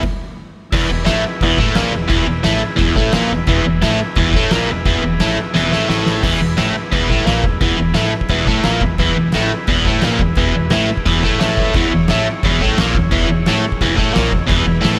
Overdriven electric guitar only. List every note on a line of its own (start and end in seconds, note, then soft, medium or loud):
0.73 0.89 E2 medium
0.73 0.90 E3 medium
0.90 1.04 E2 medium
1.05 1.22 A2 loud
1.05 1.23 A3 loud
1.43 1.59 E2 loud
1.43 1.59 E3 loud
1.58 1.75 A2 medium
1.58 1.75 A3 loud
1.75 1.92 A#2 loud
1.75 1.93 A#3 loud
1.92 2.06 E2 medium
2.08 2.26 E2 medium
2.08 2.26 E3 loud
2.27 2.41 E2 medium
2.43 2.61 A2 medium
2.43 2.61 A3 loud
2.76 2.94 E2 loud
2.76 2.95 E3 loud
2.96 3.12 A2 medium
2.96 3.13 A3 loud
3.13 3.30 A#2 medium
3.13 3.30 A#3 loud
3.32 3.45 E2 medium
3.47 3.64 E2 loud
3.47 3.65 E3 loud
3.65 3.79 E2 medium
3.82 3.99 A2 loud
3.82 3.99 A3 loud
4.16 4.33 E2 loud
4.16 4.34 E3 loud
4.36 4.52 A2 loud
4.36 4.52 A3 loud
4.52 4.68 A#2 medium
4.52 4.69 A#3 loud
4.71 4.83 E2 medium
4.86 5.01 E2 loud
4.86 5.03 E3 loud
5.03 5.17 E2 medium
5.20 5.37 A2 medium
5.20 5.37 A3 loud
5.54 5.71 E2 loud
5.54 5.71 E3 loud
5.72 5.87 A2 loud
5.72 5.88 A3 loud
5.88 6.23 A2 medium
5.88 6.23 A3 loud
6.22 6.38 E2 loud
6.22 6.40 E3 loud
6.40 6.54 E2 medium
6.57 6.74 A2 medium
6.57 6.75 A3 loud
6.92 7.09 E2 medium
6.92 7.10 E3 loud
7.10 7.26 A2 loud
7.10 7.26 A3 loud
7.26 7.43 A#2 medium
7.26 7.44 A#3 loud
7.42 7.57 E2 medium
7.61 7.77 E2 medium
7.61 7.79 E3 loud
7.78 7.92 E2 medium
7.94 8.12 A2 medium
7.94 8.12 A3 loud
8.30 8.47 E2 loud
8.30 8.47 E3 loud
8.46 8.63 A2 medium
8.46 8.64 A3 loud
8.64 8.81 A#2 medium
8.64 8.81 A#3 loud
8.82 8.96 E2 medium
8.99 9.14 E2 medium
8.99 9.16 E3 loud
9.15 9.30 E2 medium
9.34 9.51 A2 medium
9.34 9.51 A3 loud
9.68 9.85 E2 loud
9.68 9.86 E3 loud
9.86 10.03 A2 loud
9.86 10.03 A3 loud
10.04 10.20 A#2 medium
10.04 10.21 A#3 loud
10.22 10.35 E2 medium
10.38 10.54 E2 loud
10.38 10.54 E3 loud
10.56 10.69 E2 medium
10.71 10.88 A2 loud
10.71 10.89 A3 loud
11.06 11.23 E2 medium
11.06 11.23 E3 loud
11.23 11.38 A2 medium
11.23 11.39 A3 loud
11.40 11.74 A2 medium
11.40 11.74 A3 loud
11.75 11.91 E2 loud
11.75 11.92 E3 loud
11.93 12.06 E2 medium
12.09 12.26 A2 medium
12.09 12.26 A3 loud
12.44 12.61 E2 loud
12.44 12.61 E3 loud
12.61 12.78 A2 loud
12.61 12.78 A3 loud
12.80 12.95 A#2 medium
12.80 12.96 A#3 loud
12.94 13.08 E2 medium
13.11 13.28 E2 medium
13.11 13.29 E3 loud
13.29 13.43 E2 medium
13.48 13.64 A2 medium
13.48 13.64 A3 loud
13.82 13.98 E2 loud
13.82 13.98 E3 loud
13.96 14.12 A2 medium
13.96 14.14 A3 loud
14.13 14.31 A#2 medium
14.13 14.32 A#3 loud
14.31 14.45 E2 medium
14.47 14.65 E2 loud
14.47 14.66 E3 loud
14.66 14.80 E2 medium
14.81 14.99 A2 medium
14.81 14.99 A3 loud